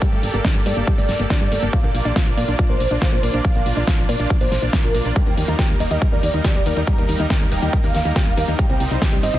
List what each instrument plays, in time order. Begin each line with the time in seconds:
0.02 synth pluck G3, supersaw synth A#3 G4 A4 D5 G5, kick, closed hi-hat
0.12 fm bass G1, synth pluck A3, closed hi-hat
0.23 fm bass G1, supersaw synth A#3 G4 A4 D5, open hi-hat
0.34 fm bass G1, synth pluck A#3, closed hi-hat
0.45 supersaw synth A#3 G4 A4 D5, synth pluck D4, kick, snare, closed hi-hat
0.55 fm bass G1, synth pluck G3, closed hi-hat
0.66 fm bass G2, synth pluck A3, supersaw synth A#3 G4 A4 D5, open hi-hat
0.77 fm bass G1, supersaw synth A#3 G4 A4 D5, synth pluck A#3, closed hi-hat
0.87 synth pluck G3, supersaw synth A#3 G4 A4 D5, kick, closed hi-hat
0.98 fm bass G1, synth pluck A3, supersaw synth D5, open hi-hat
1.09 fm bass G1, snare, open hi-hat
1.19 fm bass G1, supersaw synth A#3 G4 A4 D5, synth pluck A#3, closed hi-hat
1.30 supersaw synth A#3 G4 A4 D5, synth pluck D4, kick, snare, closed hi-hat
1.41 fm bass G2, synth pluck G3, closed hi-hat
1.52 fm bass G1, synth pluck A3, supersaw synth A#3 G4 A4 D5, open hi-hat
1.62 fm bass G1, synth pluck A#3, closed hi-hat
1.73 synth pluck F3, supersaw synth A#3 D4 F4 D5 F5, kick, closed hi-hat
1.84 fm bass A#1, synth pluck A#3, closed hi-hat
1.95 fm bass A#1, supersaw synth A#3 D4 F4 D5, open hi-hat
2.05 fm bass A#1, synth pluck D4, closed hi-hat
2.16 supersaw synth A#3 D4 F4 D5, synth pluck F4, kick, snare, closed hi-hat
2.27 fm bass A#1, synth pluck F3, closed hi-hat
2.37 fm bass A#2, synth pluck A#3, supersaw synth A#3 D4 F4 D5, open hi-hat
2.48 fm bass A#1, supersaw synth A#3 D4 F4 D5, synth pluck D4, closed hi-hat
2.59 synth pluck F3, supersaw synth A#3 D4 F4 D5, kick, closed hi-hat
2.69 fm bass A#1, synth pluck A#3, supersaw synth C5
2.80 fm bass A#1, open hi-hat
2.91 fm bass A#1, supersaw synth A#3 D4 F4 D5, synth pluck D4, closed hi-hat
3.02 supersaw synth A#3 D4 F4 C5 D5, synth pluck F4, kick, snare, closed hi-hat
3.12 fm bass A#2, synth pluck F3, closed hi-hat
3.23 fm bass A#1, supersaw synth A#3 D4 F4 D5, synth pluck A#3, open hi-hat
3.34 fm bass A#1, synth pluck D4, closed hi-hat
3.44 synth pluck F3, supersaw synth A#3 D4 F4 D5 F5, kick, closed hi-hat
3.55 fm bass A#1, synth pluck A#3, closed hi-hat
3.66 fm bass A#1, supersaw synth A#3 D4 F4 D5, open hi-hat
3.77 fm bass A#1, synth pluck D4, closed hi-hat
3.87 supersaw synth A#3 D4 F4 D5, synth pluck F4, kick, snare, closed hi-hat
3.98 fm bass A#1, synth pluck F3, closed hi-hat
4.09 fm bass A#2, supersaw synth A#3 D4 F4 D5, synth pluck A#3, open hi-hat
4.19 fm bass A#1, supersaw synth A#3 D4 F4 D5, synth pluck D4, closed hi-hat
4.30 synth pluck F3, supersaw synth A#3 D4 F4 D5, kick, closed hi-hat
4.41 fm bass A#1, synth pluck A#3, supersaw synth C5, open hi-hat
4.52 fm bass A#1, snare, open hi-hat
4.62 fm bass A#1, supersaw synth A#3 D4 F4 D5, synth pluck D4, closed hi-hat
4.73 supersaw synth A#3 D4 F4 A#4 D5, synth pluck F4, kick, snare, closed hi-hat
4.84 fm bass A#1, synth pluck F3, closed hi-hat
4.94 fm bass A#1, synth pluck A#3, supersaw synth A#3 D4 F4 D5, open hi-hat
5.05 fm bass A#1, synth pluck D4, closed hi-hat
5.16 synth pluck G3, supersaw synth G3 A#3 D#4 A#4 G5, kick, closed hi-hat
5.27 fm bass D#2, synth pluck A#3, closed hi-hat
5.37 fm bass D#2, supersaw synth G3 A#3 D#4 A#4, open hi-hat
5.48 fm bass D#2, synth pluck D#4, closed hi-hat
5.59 supersaw synth G3 A#3 D#4 A#4, synth pluck G4, kick, snare, closed hi-hat
5.70 fm bass D#2, synth pluck G3, closed hi-hat
5.80 fm bass D#1, supersaw synth G3 A#3 D#4 A#4 D#5, synth pluck A#3, open hi-hat
5.91 fm bass D#2, supersaw synth G3 A#3 D#4 A#4, synth pluck D#4, closed hi-hat
6.02 synth pluck G3, supersaw synth G3 A#3 D#4 A#4, kick, closed hi-hat
6.12 fm bass D#2, synth pluck A#3, supersaw synth D5
6.23 fm bass D#2, open hi-hat
6.34 fm bass D#2, supersaw synth G3 A#3 D#4 A#4, synth pluck D#4, closed hi-hat
6.44 supersaw synth G3 A#3 D#4 A#4 D5, synth pluck G4, kick, snare, closed hi-hat
6.55 fm bass D#1, synth pluck G3, closed hi-hat
6.66 fm bass D#2, supersaw synth G3 A#3 D#4 A#4, synth pluck A#3, open hi-hat
6.77 fm bass D#2, synth pluck D#4, closed hi-hat
6.87 supersaw synth G3 A#3 D#4 A#4 A#5, synth pluck G3, kick, closed hi-hat
6.98 fm bass D#2, synth pluck A#3, closed hi-hat
7.09 fm bass D#2, supersaw synth G3 A#3 D#4 A#4, open hi-hat
7.20 fm bass D#2, synth pluck D#4, closed hi-hat
7.30 supersaw synth G3 A#3 D#4 A#4, synth pluck G4, kick, snare, closed hi-hat
7.41 fm bass D#2, synth pluck G3, closed hi-hat
7.52 fm bass D#1, supersaw synth G3 A#3 D#4 A#4 G5, synth pluck A#3, open hi-hat
7.62 fm bass D#2, supersaw synth G3 A#3 D#4 A#4, synth pluck D#4, closed hi-hat
7.73 supersaw synth G3 A#3 D#4 A#4, synth pluck G3, kick, closed hi-hat
7.84 fm bass D#2, synth pluck A#3, supersaw synth F5, open hi-hat
7.95 fm bass D#2, snare, open hi-hat
8.05 fm bass D#2, supersaw synth G3 A#3 D#4 A#4, synth pluck D#4, closed hi-hat
8.16 supersaw synth G3 A#3 D#4 A#4 F5, synth pluck G4, kick, snare, closed hi-hat
8.27 fm bass D#1, synth pluck G3, closed hi-hat
8.37 fm bass D#2, supersaw synth G3 A#3 D#4 A#4, synth pluck A#3, open hi-hat
8.48 fm bass D#2, synth pluck D#4, closed hi-hat
8.59 supersaw synth G3 C4 D#4 C5 G5, synth pluck G3, kick, closed hi-hat
8.70 fm bass C2, synth pluck C4, closed hi-hat
8.80 fm bass C2, supersaw synth G3 C4 D#4 C5, open hi-hat
8.91 fm bass C2, synth pluck D#4, closed hi-hat
9.02 supersaw synth G3 C4 D#4 C5, synth pluck G4, kick, snare, closed hi-hat
9.12 fm bass C2, synth pluck G3, closed hi-hat
9.23 fm bass G1, supersaw synth G3 C4 D#4 C5 D#5, synth pluck C4, open hi-hat
9.34 fm bass C2, supersaw synth G3 C4 D#4 C5, synth pluck D#4, closed hi-hat